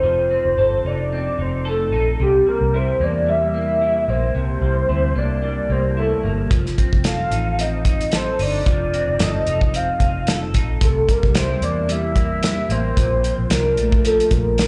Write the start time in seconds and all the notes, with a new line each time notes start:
Already playing: C4 D#4 A4 C5
0.03 F1 F3
0.31 C4
0.45 F1
0.57 G1 A4
0.84 F1 D#4 D5
1.13 C4 D5
1.38 F1 D#4 C5
1.65 A4
1.92 A#1 D#4
2.20 C2 C3 G4
2.47 G3 A#4
2.61 C2
2.74 E4 C5
3.00 E2 A#3 D5
3.27 G3 E5
3.54 A#3
3.81 E4
4.08 A#1 A#3 C5
4.35 C2 C3
4.61 C2 G3
4.88 D2 E4
5.16 C2 A#3 D5
5.43 G3 D5
5.69 C2 A#3 C5
5.97 E4 A4
6.24 G1 A#3
6.50 F1 F3, kick, closed hi-hat
6.66 snare
6.78 C4, kick, closed hi-hat
6.93 F1, kick
7.04 A4 F5, snare, closed hi-hat
7.31 A1 D#4, closed hi-hat
7.59 C4 D#5, closed hi-hat
7.85 D#4, kick, closed hi-hat
8.01 closed hi-hat
8.12 A4 C5, snare, closed hi-hat
8.39 G1 D#4 D5, open hi-hat
8.66 F1 F3, kick, closed hi-hat
8.94 C4, closed hi-hat
9.08 F1
9.19 G1 A4 D#5, snare, closed hi-hat
9.47 F1 D#4, closed hi-hat
9.61 kick
9.74 C4 F5, closed hi-hat
10.00 F1 D#4, kick, closed hi-hat
10.27 A4, snare, closed hi-hat
10.54 A#1 D#4, kick, closed hi-hat
10.81 C2 C3 A4, kick, closed hi-hat
11.09 G3 A#4, kick, closed hi-hat
11.23 C2, kick
11.35 E4 C5, snare, closed hi-hat
11.61 E2 A#3 D5, closed hi-hat
11.89 G3 E5, closed hi-hat
12.15 A#3, kick, closed hi-hat
12.43 E4, snare, closed hi-hat
12.69 A1 A#3 C5, closed hi-hat
12.97 A#1 A#2, kick, closed hi-hat
13.24 F3, closed hi-hat
13.38 A#1
13.50 C2 D4 A#4, snare, closed hi-hat
13.77 A#1 A3, closed hi-hat
13.92 kick
14.05 F3 A4, closed hi-hat
14.20 closed hi-hat
14.31 A#1 A#4, kick, closed hi-hat
14.58 D4, snare, closed hi-hat